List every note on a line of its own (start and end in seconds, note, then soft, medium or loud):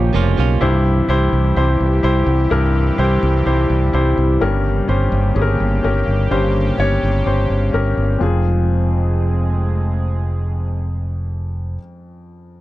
0.00 0.57 C#3 medium
0.00 0.12 F3 medium
0.00 0.57 F3 medium
0.00 0.63 F3 medium
0.00 0.13 A#3 medium
0.00 0.57 A#3 medium
0.00 0.63 A#3 medium
0.00 0.14 C#4 medium
0.00 0.63 C#4 medium
0.00 0.63 D#4 medium
0.00 0.15 F4 medium
0.00 0.63 F4 medium
0.00 0.59 G4 loud
0.00 0.63 D#5 medium
0.00 0.62 F5 medium
0.13 0.34 F1 medium
0.13 0.36 F3 medium
0.13 0.37 A#3 medium
0.13 0.38 C#4 medium
0.13 0.39 F4 medium
0.37 0.57 B1 medium
0.37 0.61 F3 medium
0.37 0.62 A#3 medium
0.37 0.62 C#4 medium
0.37 0.62 F4 medium
0.61 1.00 C2 medium
0.61 1.28 G2 medium
0.61 4.37 E3 medium
0.61 8.17 G3 medium
0.61 4.37 C4 medium
0.61 1.05 E4 medium
0.61 4.37 G4 medium
0.61 1.05 G4 medium
0.61 1.05 C5 medium
1.08 1.28 C2 medium
1.08 1.53 E4 medium
1.08 1.53 G4 medium
1.08 1.53 C5 medium
1.32 1.52 C2 medium
1.56 1.76 C2 medium
1.56 2.00 E4 medium
1.56 2.01 G4 medium
1.56 2.01 C5 medium
1.80 2.00 C2 medium
2.03 2.23 C2 medium
2.03 2.47 E4 medium
2.03 2.48 G4 medium
2.03 2.48 C5 medium
2.26 2.46 C2 medium
2.50 2.90 C2 medium
2.50 3.18 G2 medium
2.50 2.95 E4 medium
2.50 2.95 G4 medium
2.50 2.95 A#4 medium
2.98 3.18 C2 medium
2.98 3.42 E4 medium
2.98 3.43 G4 medium
2.98 3.43 C5 medium
3.23 3.42 C2 loud
3.46 3.66 C2 medium
3.46 3.90 E4 medium
3.46 3.90 G4 medium
3.46 3.90 C5 medium
3.70 3.89 C2 medium
3.93 4.13 C2 medium
3.93 4.37 E4 medium
3.93 4.38 G4 medium
3.93 4.38 C5 medium
4.17 4.37 C2 medium
4.40 4.80 G1 medium
4.40 5.08 G2 medium
4.40 8.17 C#3 medium
4.40 5.08 G3 medium
4.40 8.17 A#3 medium
4.40 4.85 C#4 medium
4.40 8.17 G4 medium
4.40 4.85 G4 medium
4.40 4.85 A#4 medium
4.88 5.08 G1 medium
4.88 5.32 C#4 medium
4.88 5.33 G4 medium
4.88 5.33 C5 medium
5.12 5.31 G1 medium
5.35 5.55 G1 loud
5.35 5.79 C#4 medium
5.35 5.80 G4 medium
5.35 5.41 G#4 medium
5.42 5.83 A#4 medium
5.60 5.79 G1 medium
5.83 6.03 G1 medium
5.83 6.27 C#4 medium
5.83 6.28 G4 medium
5.83 6.28 A#4 medium
6.07 6.27 G1 medium
6.30 6.70 G1 medium
6.30 6.98 G2 medium
6.30 6.98 G3 medium
6.30 6.75 C#4 medium
6.30 6.75 G4 medium
6.30 6.75 C5 medium
6.78 6.98 G1 medium
6.78 7.22 C#4 medium
6.78 7.23 G4 medium
6.78 7.23 C#5 medium
7.03 7.22 G1 medium
7.26 7.46 G1 medium
7.26 7.70 C#4 medium
7.26 7.70 G4 medium
7.26 7.71 C5 medium
7.50 7.69 G1 medium
7.73 7.93 G1 medium
7.73 8.17 C#4 medium
7.73 8.18 G4 medium
7.73 8.18 A#4 medium
7.97 8.17 G1 medium
8.18 11.77 F1 medium
8.18 11.76 F2 medium
8.18 11.77 F3 medium
8.18 11.76 G#3 medium
8.18 11.74 C4 medium
8.18 11.76 C4 medium
8.18 11.77 F4 medium
8.18 11.77 G#4 medium
8.23 11.79 G#4 medium